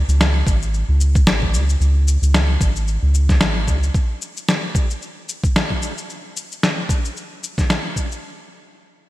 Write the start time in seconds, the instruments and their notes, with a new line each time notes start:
0.08 analog synth bass C#2, shaker
0.21 snare, shaker
0.47 analog synth bass G#1, kick, shaker
0.62 shaker
0.74 shaker
0.89 analog synth bass C#2
1.01 shaker
1.15 kick, shaker
1.27 analog synth bass G#1, snare, shaker
1.42 kick
1.54 analog synth bass C#2, shaker
1.69 shaker
1.80 analog synth bass C#2, shaker
2.08 shaker
2.22 analog synth bass C#2, shaker
2.34 snare, shaker
2.61 analog synth bass G#1, kick, shaker
2.76 shaker
2.88 shaker
3.03 analog synth bass C#2
3.14 shaker
3.29 kick, snare, shaker
3.41 analog synth bass G#1, snare, shaker
3.68 analog synth bass C#2, kick, shaker
3.83 shaker
3.94 kick, shaker
4.22 shaker
4.37 shaker
4.49 snare, shaker
4.75 kick, shaker
4.90 shaker
5.02 shaker
5.29 shaker
5.44 kick, shaker
5.56 snare, shaker
5.70 kick
5.82 shaker
5.98 shaker
6.10 shaker
6.37 shaker
6.52 shaker
6.63 snare, shaker
6.89 kick, shaker
7.05 shaker
7.17 shaker
7.44 shaker
7.58 kick, snare, shaker
7.70 snare, shaker
7.96 kick, shaker
8.12 shaker